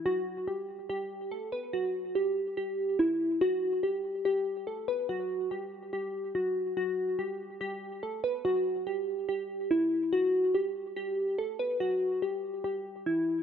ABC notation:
X:1
M:4/4
L:1/8
Q:1/4=143
K:G
V:1 name="Synth keys"
F2 G2 G2 A B | F2 G2 G2 E2 | F2 G2 G2 A B | F2 G2 G2 F2 |
F2 G2 G2 A B | F2 G2 G2 E2 | F2 G2 G2 A B | F2 G2 G2 E2 |]